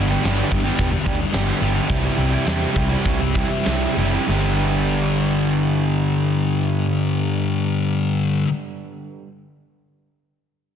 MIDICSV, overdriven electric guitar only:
0, 0, Header, 1, 3, 480
1, 0, Start_track
1, 0, Key_signature, 1, "major"
1, 0, Tempo, 549451
1, 1651, Time_signature, 4, 2, 24, 8
1, 1652, Tempo, 587659
1, 3092, Tempo, 636267
1, 8452, End_track
2, 0, Start_track
2, 0, Title_t, "Overdriven electric guitar"
2, 0, Program_c, 0, 29
2, 0, Note_on_c, 0, 43, 84
2, 0, Note_on_c, 0, 50, 74
2, 0, Note_on_c, 0, 55, 90
2, 0, Note_on_c, 0, 59, 92
2, 78, Note_on_c, 0, 67, 61
2, 91, Note_on_c, 0, 62, 60
2, 97, Note_off_c, 0, 59, 0
2, 101, Note_on_c, 0, 59, 55
2, 106, Note_off_c, 0, 55, 0
2, 109, Note_on_c, 0, 55, 52
2, 190, Note_off_c, 0, 43, 0
2, 197, Note_off_c, 0, 50, 0
2, 200, Note_on_c, 0, 43, 84
2, 208, Note_on_c, 0, 50, 96
2, 209, Note_off_c, 0, 55, 0
2, 212, Note_on_c, 0, 55, 88
2, 213, Note_off_c, 0, 62, 0
2, 215, Note_off_c, 0, 59, 0
2, 219, Note_on_c, 0, 59, 104
2, 224, Note_on_c, 0, 62, 100
2, 225, Note_off_c, 0, 67, 0
2, 229, Note_on_c, 0, 67, 112
2, 431, Note_off_c, 0, 55, 0
2, 434, Note_on_c, 0, 55, 66
2, 444, Note_off_c, 0, 59, 0
2, 446, Note_off_c, 0, 62, 0
2, 448, Note_on_c, 0, 59, 68
2, 457, Note_on_c, 0, 62, 75
2, 463, Note_off_c, 0, 67, 0
2, 467, Note_on_c, 0, 67, 71
2, 552, Note_off_c, 0, 67, 0
2, 555, Note_on_c, 0, 67, 70
2, 557, Note_off_c, 0, 62, 0
2, 568, Note_on_c, 0, 62, 67
2, 571, Note_off_c, 0, 59, 0
2, 574, Note_on_c, 0, 59, 66
2, 580, Note_off_c, 0, 55, 0
2, 584, Note_on_c, 0, 55, 50
2, 678, Note_off_c, 0, 43, 0
2, 681, Note_off_c, 0, 50, 0
2, 788, Note_off_c, 0, 62, 0
2, 794, Note_off_c, 0, 67, 0
2, 798, Note_off_c, 0, 59, 0
2, 801, Note_off_c, 0, 55, 0
2, 913, Note_on_c, 0, 55, 63
2, 924, Note_on_c, 0, 59, 69
2, 934, Note_on_c, 0, 62, 76
2, 941, Note_on_c, 0, 67, 78
2, 1037, Note_off_c, 0, 62, 0
2, 1039, Note_off_c, 0, 67, 0
2, 1046, Note_off_c, 0, 55, 0
2, 1046, Note_off_c, 0, 59, 0
2, 1154, Note_on_c, 0, 43, 85
2, 1163, Note_on_c, 0, 50, 86
2, 1169, Note_on_c, 0, 55, 85
2, 1176, Note_on_c, 0, 59, 96
2, 1179, Note_on_c, 0, 62, 91
2, 1186, Note_on_c, 0, 67, 94
2, 1400, Note_off_c, 0, 55, 0
2, 1404, Note_on_c, 0, 55, 65
2, 1410, Note_off_c, 0, 59, 0
2, 1413, Note_off_c, 0, 62, 0
2, 1413, Note_on_c, 0, 59, 68
2, 1424, Note_on_c, 0, 62, 68
2, 1428, Note_off_c, 0, 67, 0
2, 1432, Note_on_c, 0, 67, 71
2, 1517, Note_off_c, 0, 67, 0
2, 1520, Note_on_c, 0, 67, 60
2, 1521, Note_off_c, 0, 62, 0
2, 1532, Note_on_c, 0, 62, 61
2, 1539, Note_off_c, 0, 59, 0
2, 1542, Note_on_c, 0, 59, 59
2, 1547, Note_off_c, 0, 55, 0
2, 1551, Note_on_c, 0, 55, 54
2, 1632, Note_off_c, 0, 43, 0
2, 1637, Note_off_c, 0, 50, 0
2, 1638, Note_off_c, 0, 62, 0
2, 1641, Note_on_c, 0, 48, 76
2, 1649, Note_off_c, 0, 55, 0
2, 1652, Note_off_c, 0, 59, 0
2, 1652, Note_on_c, 0, 52, 79
2, 1655, Note_on_c, 0, 55, 77
2, 1664, Note_on_c, 0, 64, 81
2, 1669, Note_off_c, 0, 67, 0
2, 1672, Note_on_c, 0, 67, 88
2, 1990, Note_off_c, 0, 67, 0
2, 1999, Note_on_c, 0, 67, 63
2, 2004, Note_off_c, 0, 64, 0
2, 2013, Note_on_c, 0, 64, 65
2, 2017, Note_off_c, 0, 55, 0
2, 2027, Note_on_c, 0, 55, 47
2, 2105, Note_off_c, 0, 48, 0
2, 2113, Note_off_c, 0, 52, 0
2, 2115, Note_on_c, 0, 48, 81
2, 2119, Note_off_c, 0, 55, 0
2, 2123, Note_on_c, 0, 52, 84
2, 2124, Note_off_c, 0, 64, 0
2, 2129, Note_on_c, 0, 55, 90
2, 2133, Note_off_c, 0, 67, 0
2, 2134, Note_on_c, 0, 64, 90
2, 2143, Note_on_c, 0, 67, 90
2, 2342, Note_off_c, 0, 52, 0
2, 2352, Note_on_c, 0, 52, 67
2, 2354, Note_off_c, 0, 55, 0
2, 2361, Note_off_c, 0, 64, 0
2, 2363, Note_on_c, 0, 55, 66
2, 2371, Note_off_c, 0, 67, 0
2, 2371, Note_on_c, 0, 64, 60
2, 2381, Note_on_c, 0, 67, 68
2, 2463, Note_off_c, 0, 67, 0
2, 2473, Note_on_c, 0, 67, 67
2, 2476, Note_off_c, 0, 64, 0
2, 2486, Note_on_c, 0, 64, 56
2, 2490, Note_off_c, 0, 55, 0
2, 2500, Note_on_c, 0, 55, 54
2, 2596, Note_off_c, 0, 48, 0
2, 2710, Note_off_c, 0, 67, 0
2, 2715, Note_off_c, 0, 64, 0
2, 2717, Note_off_c, 0, 52, 0
2, 2717, Note_off_c, 0, 55, 0
2, 2834, Note_on_c, 0, 52, 62
2, 2844, Note_on_c, 0, 55, 64
2, 2855, Note_on_c, 0, 64, 71
2, 2863, Note_on_c, 0, 67, 73
2, 2954, Note_off_c, 0, 67, 0
2, 2956, Note_off_c, 0, 64, 0
2, 2960, Note_off_c, 0, 52, 0
2, 2960, Note_off_c, 0, 55, 0
2, 3079, Note_on_c, 0, 48, 83
2, 3085, Note_on_c, 0, 52, 81
2, 3095, Note_on_c, 0, 55, 86
2, 3102, Note_on_c, 0, 64, 95
2, 3105, Note_on_c, 0, 67, 88
2, 3305, Note_off_c, 0, 52, 0
2, 3314, Note_on_c, 0, 52, 61
2, 3316, Note_off_c, 0, 55, 0
2, 3325, Note_off_c, 0, 64, 0
2, 3325, Note_on_c, 0, 55, 57
2, 3332, Note_off_c, 0, 67, 0
2, 3334, Note_on_c, 0, 64, 66
2, 3341, Note_on_c, 0, 67, 70
2, 3423, Note_off_c, 0, 67, 0
2, 3432, Note_on_c, 0, 67, 62
2, 3438, Note_off_c, 0, 64, 0
2, 3447, Note_on_c, 0, 64, 55
2, 3449, Note_off_c, 0, 55, 0
2, 3458, Note_on_c, 0, 55, 49
2, 3542, Note_off_c, 0, 48, 0
2, 3542, Note_off_c, 0, 52, 0
2, 3542, Note_off_c, 0, 67, 0
2, 3550, Note_off_c, 0, 64, 0
2, 3554, Note_on_c, 0, 43, 80
2, 3555, Note_off_c, 0, 55, 0
2, 3565, Note_on_c, 0, 50, 82
2, 3569, Note_on_c, 0, 55, 90
2, 3575, Note_on_c, 0, 59, 80
2, 3581, Note_on_c, 0, 62, 86
2, 3585, Note_on_c, 0, 67, 88
2, 6706, Note_off_c, 0, 43, 0
2, 6716, Note_off_c, 0, 50, 0
2, 6721, Note_off_c, 0, 55, 0
2, 6727, Note_off_c, 0, 59, 0
2, 6733, Note_off_c, 0, 62, 0
2, 6736, Note_off_c, 0, 67, 0
2, 8452, End_track
3, 0, Start_track
3, 0, Title_t, "Muted overdriven electric guitar strokes"
3, 797, Note_on_c, 9, 29, 48
3, 885, Note_off_c, 9, 29, 0
3, 1043, Note_on_c, 9, 29, 45
3, 1130, Note_off_c, 9, 29, 0
3, 2720, Note_on_c, 9, 29, 47
3, 2802, Note_off_c, 9, 29, 0
3, 2964, Note_on_c, 9, 29, 47
3, 3046, Note_off_c, 9, 29, 0
3, 8452, End_track
0, 0, End_of_file